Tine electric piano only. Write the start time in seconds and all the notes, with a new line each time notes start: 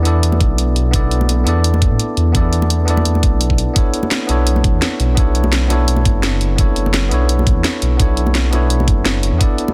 Already playing: B3 D4 E4 A4 D5
0.03 B3 D4 E4 A4
0.08 D5
0.91 B3 D4 E4 A4
0.96 D5
1.44 B3 D4 E4 A4
1.49 D5
2.32 B3 D4 E4 A4
2.37 D5
2.85 B3 D4 E4 A4
2.90 D5
3.74 B3 D4 E4 A4
3.78 C#5
4.27 B3 D4 E4 A4
4.31 C#5
5.15 B3 D4 E4 A4
5.20 C#5
5.68 B3 D4 E4 A4
5.73 C#5
6.56 B3 D4 E4 A4
6.61 C#5
7.09 B3 D4 E4 A4
7.14 C#5
7.97 B3 D4 E4 A4
8.02 C#5
8.50 B3 D4 E4 A4
8.55 C#5
9.38 B3 D4 E4 A4
9.43 D5